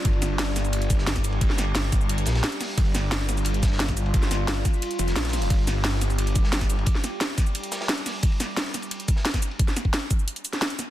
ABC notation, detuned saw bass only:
X:1
M:4/4
L:1/8
Q:1/4=176
K:Cm
V:1 name="Detuned saw bass" clef=bass
G,,,8 | G,,,3 G,,,2 B,,, z2 | G,,,8 | G,,,3 z2 F,,, B,,,2 |
G,,,8 | z8 | z8 | z8 |]